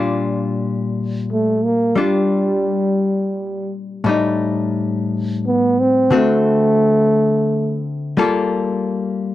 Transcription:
Already playing: A#2 G3 D4 F4
1.32 A3
1.65 A#3
1.96 G3 D4 F4
2.01 G3
4.04 A2 G3
4.09 D#4
5.47 B3
5.80 C4
6.11 D3 A3 C4 F#4
8.17 G3 A#3 F4 A4

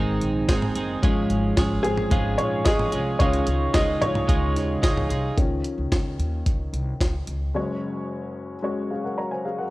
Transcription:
Already playing: G#1 G#2 D#3 G#3 C4 D#4 G#4 C5
0.21 A#1, closed hi-hat
0.48 G#1 G#3 C4 D#4 G#4, kick, snare, closed hi-hat
0.62 floor tom
0.75 F#1 G#3 C4 D#4 G#4, closed hi-hat
1.02 G#1 G#2 F3 G#3 C#4 F4 G#4, kick, closed hi-hat
1.30 G#1, closed hi-hat
1.57 G#1 G#3 C#4 F4 G#4, kick, snare, closed hi-hat
1.83 G#1 C4 G#4, closed hi-hat
1.98 floor tom
2.11 G#1 G#2 F3 G#3 C#4 F4 G#4, kick, closed hi-hat
2.38 A#1 F4 C#5, closed hi-hat
2.65 G#1 G#3 C#4 F4 G#4 D#5, kick, snare, closed hi-hat
2.79 floor tom
2.92 C2 G#3 C#4 F4 G#4, closed hi-hat
3.19 C#2 C#3 D#3 F3 G#3 C#4 D#4 F4 G#4 C#5, kick, closed hi-hat
3.33 closed hi-hat
3.46 C#2 D#4 F4 G#4, closed hi-hat
3.74 C#2 G#3 D#4 F4 G#4 D#5, kick, snare, closed hi-hat
4.01 C#2 F4 C#5, closed hi-hat, floor tom
4.15 floor tom
4.28 C#2 C#3 G#3 D#4 F4 G#4, kick, closed hi-hat
4.55 D#2, snare, closed hi-hat
4.82 C#2 G#3 D#4 F4 G#4, kick, snare, closed hi-hat
4.97 floor tom
5.09 C2 D#4 F4 G#4, closed hi-hat
5.37 C#2 D#3 F3 C#4, kick, closed hi-hat
5.64 closed hi-hat
5.78 C#2
5.92 C#2, kick, snare, closed hi-hat
6.19 D#2, closed hi-hat
6.46 C#2, kick, closed hi-hat
6.73 C2, closed hi-hat
7.00 C#2, kick, snare, closed hi-hat
7.27 C#2, closed hi-hat
7.54 F#1 F#2 G#3 C#4 F#4 C#5
8.62 G#3 C#4 F#4 C#5
8.90 G#4 F5
9.04 A#4 F#5
9.18 C#5 A#5
9.31 C5 G#5
9.45 G#4 F5
9.58 A#4 F#5

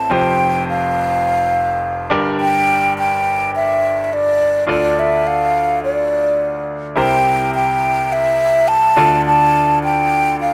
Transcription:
Already playing: C4 E4 A4 C5 A5
0.10 F1 F2 C4 F4 G4 C5 G5
0.69 F5
2.10 G1 G2 D4 G4 A#4 D5
2.41 G5
2.99 G5
3.56 E5
4.04 E5
4.13 D5
4.67 D2 D3 D4 F4 A4 D5
4.99 E5
5.27 F5
5.84 D5
6.96 C2 C3 E4 G4 A#4 C5 G5
7.55 G5
8.13 E5
8.68 A5
8.96 D2 D3 D4 F4 A4 D5
9.26 A5
9.84 G5
10.41 F5

